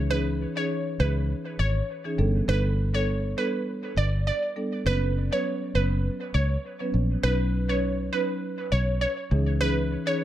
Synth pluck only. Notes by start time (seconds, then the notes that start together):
0.11 B4
0.57 C#5
1.00 B4
1.59 C#5
2.49 B4
2.94 C#5
3.38 B4
3.97 D5
4.27 D5
4.86 B4
5.33 C#5
5.75 B4
6.34 C#5
7.23 B4
7.69 C#5
8.13 B4
8.72 C#5
9.01 C#5
9.61 B4
10.07 C#5